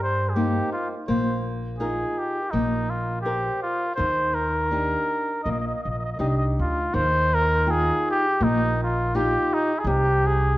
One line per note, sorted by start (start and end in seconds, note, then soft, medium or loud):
0.00 0.58 G2 medium
0.00 0.34 G3 soft
0.00 0.31 C5 medium
0.29 0.36 G#4 soft
0.34 0.93 A#3 soft
0.34 0.94 C4 soft
0.34 0.94 D#4 soft
0.34 0.72 G4 medium
0.73 0.88 F4 medium
1.08 2.02 A#1 medium
1.08 1.78 A#3 medium
1.08 1.44 C5 medium
1.78 2.38 D#4 soft
1.78 2.38 F4 soft
1.78 2.20 G#4 medium
1.78 2.39 A#4 soft
2.18 2.52 G4 medium
2.51 3.48 A#1 medium
2.51 3.23 A#3 soft
2.51 2.91 D#4 medium
2.90 3.21 F4 medium
3.21 3.60 G4 medium
3.21 3.84 C5 soft
3.26 3.84 A#4 soft
3.26 3.84 D5 soft
3.62 3.94 F4 medium
3.95 4.69 D#3 medium
3.95 4.36 C5 medium
3.99 4.94 D#2 medium
4.34 5.43 A#4 medium
4.71 5.30 D4 soft
4.71 5.30 D#4 soft
4.71 5.31 G4 soft
5.43 5.71 A#1 medium
5.43 6.17 A#3 soft
5.43 5.50 D#5 medium
5.51 5.59 D#5 soft
5.60 5.66 D#5 medium
5.67 5.74 D#5 soft
5.75 5.82 D#5 soft
5.83 6.16 A#1 medium
5.83 5.90 D#5 soft
5.90 5.98 D#5 soft
5.99 6.04 D#5 soft
6.05 6.11 D#5 soft
6.12 6.19 D#5 soft
6.19 6.55 C2 medium
6.19 6.78 D4 soft
6.19 6.78 D#4 soft
6.19 6.79 G4 soft
6.19 6.28 D#5 medium
6.29 6.36 D#5 soft
6.37 6.45 D#5 medium
6.59 6.90 D2 medium
6.59 6.96 F4 medium
6.94 7.89 D#2 medium
6.94 7.65 D#3 medium
6.94 7.35 C5 loud
7.34 7.71 A#4 medium
7.66 8.25 D#4 soft
7.66 8.25 F4 soft
7.66 8.08 G#4 medium
7.66 8.25 G5 soft
8.11 8.45 G4 medium
8.40 9.35 A#1 medium
8.40 9.11 A#3 medium
8.40 8.81 D#4 medium
8.83 9.17 F4 medium
9.15 9.72 D#4 soft
9.15 9.72 F4 soft
9.15 9.55 G4 medium
9.15 9.72 G4 medium
9.53 9.80 D#4 medium
9.79 9.89 G#4 medium
9.84 10.58 C2 medium
9.84 10.56 C3 medium
9.84 10.28 G4 medium
10.27 10.58 G#4 medium